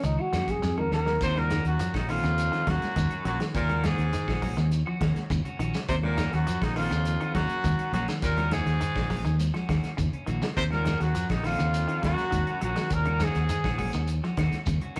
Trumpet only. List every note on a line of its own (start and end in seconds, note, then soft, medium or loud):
1.23 1.40 C5 loud
1.38 1.66 A#4 loud
1.67 1.93 F#4 medium
1.95 2.11 D#4 medium
2.09 2.71 F4 loud
2.69 3.26 F#4 loud
3.27 3.40 F#4 medium
3.56 3.87 A#4 loud
3.85 4.72 G#4 loud
5.89 5.95 C5 loud
6.05 6.35 A#4 loud
6.34 6.65 F#4 loud
6.63 6.76 D#4 loud
6.77 7.31 F4 loud
7.34 7.89 F#4 loud
7.93 8.07 F#4 medium
8.23 8.54 A#4 loud
8.53 9.40 G#4 loud
10.57 10.64 C5 loud
10.72 11.02 A#4 loud
11.01 11.30 F#4 medium
11.30 11.47 D#4 medium
11.45 12.04 F4 loud
12.04 12.58 F#4 loud
12.64 12.95 F#4 loud
12.94 13.25 A#4 loud
13.24 14.10 G#4 loud